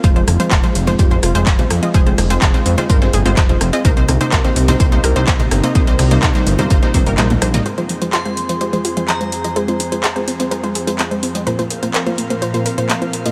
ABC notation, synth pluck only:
X:1
M:4/4
L:1/16
Q:1/4=126
K:Fm
V:1 name="Synth pluck"
[A,Fc] [A,Fc] z [A,Fc]2 [A,Fc]2 [A,Fc] [A,Fc] [A,Fc] z [A,Fc]2 [A,Fc] z [A,Fe] | [A,Fc] [A,Fc] z [A,Fc]2 [A,Fc]2 [A,Fc] [A,Fc] [A,Fc] z [A,Fc]2 [A,Fc] z [A,Fe] | [C,B,Ec] [C,B,Ec] z [C,B,Ec]2 [C,B,Ec]2 [C,B,Ec] [C,B,Ec] [C,B,Ec] z [C,B,Ec]2 [C,B,Ec] z [C,B,Ee] | [C,B,Ec] [C,B,Ec] z [C,B,Ec]2 [C,B,Ec]2 [C,B,Ec] [C,B,Ec] [C,B,Ec] [C,B,Ec] [C,B,EB] [C,B,Ec] z [B,Ec] [B,Ee] |
[A,Fc] [A,Fc] z [A,Fc]2 [A,Fc]2 [A,Fc] [A,Fc] [A,Fc] z [A,Fc]2 [A,Fc] z [A,Fe] | [A,Fc] [A,Fc] z [A,Fc]2 [A,Fc]2 [A,Fc] [A,Fc] [A,Fc] z [A,Fc]2 [A,Fc] z [A,Fe] | [B,,B,Fc] [B,,B,Fc] z [B,,B,Fc]2 [B,,B,Fc]2 [B,,B,Fc] [B,,B,Fc] [B,,B,Fc] z [B,,B,Fc]2 [B,,B,Fc] z [B,,B,Fe] |]